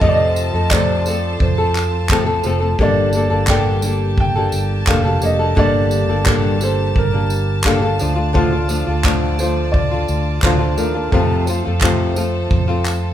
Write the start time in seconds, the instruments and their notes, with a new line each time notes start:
Already playing: string section F4 A4 A5
0.01 fretless electric bass F2, nylon-string guitar F2 C3 F3 A3 C4 A4, string section C5, upright piano D#5, kick
0.09 upright piano D5
0.14 upright piano D#5
0.36 tambourine
0.54 fretless electric bass F2, nylon-string guitar F3 A3 C4 A4
0.70 nylon-string guitar F2 C3 F3 A3 C4 A4, upright piano D5, kick, clap
1.06 nylon-string guitar F3 A3 C4 A4, tambourine
1.40 fretless electric bass F2, upright piano C5, kick
1.58 nylon-string guitar F3 A3 C4 A4
1.75 clap, tambourine
2.09 nylon-string guitar F2 C3 F3 A3 C4 A4, kick, clap
2.26 nylon-string guitar F3 A3 C4 A4
2.44 fretless electric bass F1, nylon-string guitar F3 A3 C4 A4, tambourine
2.60 nylon-string guitar F3 A3 C4 A4
2.78 fretless electric bass G1, nylon-string guitar G2 D3 G3 A#3 D4 A4, string section A#3 G4 A5, kick
2.82 upright piano D5
3.13 nylon-string guitar G3 A#3 D4, tambourine
3.17 nylon-string guitar A4
3.30 fretless electric bass G1, nylon-string guitar G3 A#3 D4 A4
3.47 nylon-string guitar G2, kick, clap
3.49 nylon-string guitar D3 G3 A#3 D4 A4, upright piano G5, clap
3.82 nylon-string guitar G3 A#3 D4 A4, tambourine
4.18 upright piano G5, kick
4.36 nylon-string guitar G3 A#3 D4 A4
4.52 fretless electric bass G1, tambourine
4.87 fretless electric bass F1, nylon-string guitar G2 D3 G3 A#3 D4 A4, upright piano F5, kick, clap
5.04 nylon-string guitar G3 A#3 D4 A4
5.21 fretless electric bass F1, nylon-string guitar G3 A#3 D4 A4, upright piano D#5, tambourine
5.39 nylon-string guitar G3 A#3 D4 A4
5.55 fretless electric bass G1, nylon-string guitar G2 D3 G3 A#3 D4 A4, kick
5.59 upright piano D5
5.91 tambourine
6.08 fretless electric bass G1, nylon-string guitar G3 A#3 D4 A4
6.25 nylon-string guitar G2 D3 G3 A#3 D4 A4, kick, clap
6.59 nylon-string guitar G3 A#3 D4 A4, upright piano C5, tambourine
6.95 fretless electric bass G1, upright piano A#4, kick
7.13 nylon-string guitar G3 A#3 D4
7.30 tambourine
7.64 nylon-string guitar G2 D3 G3 A#3 D4, kick, clap
7.66 nylon-string guitar A4, upright piano F5, clap
7.82 nylon-string guitar G3 A#3 D4 A4
7.99 fretless electric bass D2, nylon-string guitar F3 A3 D4 F4, string section F4 D5, tambourine
8.16 nylon-string guitar A3 D4 F4
8.33 nylon-string guitar D3 F3 A3 D4 F4, upright piano F4, kick
8.52 nylon-string guitar A3 D4 F4
8.68 nylon-string guitar F3 A3 D4 F4, tambourine
8.87 fretless electric bass D2, nylon-string guitar A3 D4 F4
9.04 nylon-string guitar D3 F3 A3 D4 F4, upright piano A4, kick, clap
9.39 nylon-string guitar F3 A3 D4 F4, upright piano C5, tambourine
9.72 upright piano D5, kick
9.91 nylon-string guitar A3 D4 F4
10.08 fretless electric bass D2, tambourine
10.42 fretless electric bass D2, nylon-string guitar D3 F3, upright piano C5, kick, clap
10.44 nylon-string guitar A3 D4 F4, clap
10.59 nylon-string guitar A3 D4 F4
10.77 fretless electric bass D#2, nylon-string guitar F3 A3 D4 F4, upright piano A#4, tambourine
10.94 nylon-string guitar A3 D4 F4
11.11 nylon-string guitar F2 C3 F3 A3 C4 F4, fretless electric bass F2, upright piano A4, string section A4 C5, kick
11.46 nylon-string guitar F3 A3 C4 F4, tambourine
11.65 fretless electric bass F2, nylon-string guitar F3 A3 C4 F4
11.81 nylon-string guitar F2 C3 F3 A3 C4 F4, kick, clap
12.16 nylon-string guitar F3 A3 C4 F4, tambourine
12.51 fretless electric bass F2, kick
12.68 nylon-string guitar F3 A3 C4 F4
12.86 clap, tambourine